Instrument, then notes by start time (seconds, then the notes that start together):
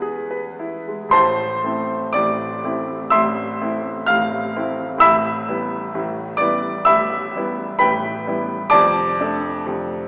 grand piano
Already playing: E2 G#3 E4 B4
0.02 G#4
0.31 B4
0.60 E4
0.88 G#3
1.09 A1 C5 A5 C6
1.14 A2
1.64 A3 C4 E4
2.13 A1 A2 D5 D6
2.64 A3 C4 E4
3.10 A1 A2 E5 C6 E6
3.62 A3 C4 E4
4.06 A1 A2 F5 F6
4.56 A3 C4 E4
4.98 A2 E5 B5 E6
5.03 A1
5.48 G3 B3 E4
5.94 A1 A2
6.37 G3 B3 E4 D5 D6
6.85 A1 A2 E5 B5 E6
7.36 G3 B3 E4
7.79 A1 A2 B4 G5 B5
8.27 G3 B3 E4
8.70 F1 F2 D5 A5 D6
9.20 A3 D4 A4
9.66 F1 F2